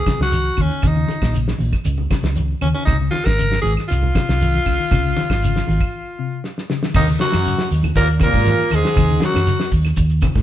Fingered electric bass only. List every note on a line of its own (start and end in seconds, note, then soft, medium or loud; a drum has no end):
0.19 0.49 C#2 medium
0.58 0.69 D#2 medium
0.83 1.04 D#2 medium
1.22 1.52 A#1 medium
1.60 1.71 A#1 medium
1.73 muted fingered electric bass stroke soft
1.85 2.06 C#2 medium
2.23 2.53 C#2 medium
2.61 2.72 D#2 medium
2.88 3.08 C#2 medium
3.27 3.56 G#1 medium
3.64 3.75 G#1 medium
3.91 4.10 C2 medium
4.29 4.58 C2 medium
4.66 4.77 C#2 medium
4.92 5.12 C#2 loud
5.30 5.59 G#1 medium
5.68 5.78 G#1 medium
5.81 muted fingered electric bass stroke soft
6.95 7.15 D#2 loud
7.34 7.53 F#2 medium
7.71 7.91 D#2 medium
7.96 8.26 D#2 loud
8.34 8.54 G#2 medium
8.72 8.82 D#2 medium
8.97 9.17 D#2 loud
9.36 9.55 F#2 medium
9.72 9.91 D#2 medium
9.97 10.27 D#2 medium
10.36 10.42 G#2 medium